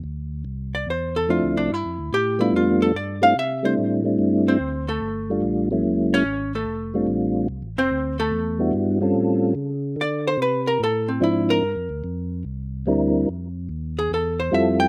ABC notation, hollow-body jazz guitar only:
X:1
M:4/4
L:1/8
Q:"Swing" 1/4=145
K:Dm
V:1 name="Hollow-body jazz guitar"
z3 d c A F D | E2 G E F A d f | e c z3 [Cc]2 [A,A]- | [A,A]2 z3 [^C^c]2 [A,A]- |
[A,A]2 z3 [Cc]2 [A,A]- | [A,A]2 z6 | d c =B _B A C E B- | B4 z4 |
z3 ^G A c e =g |]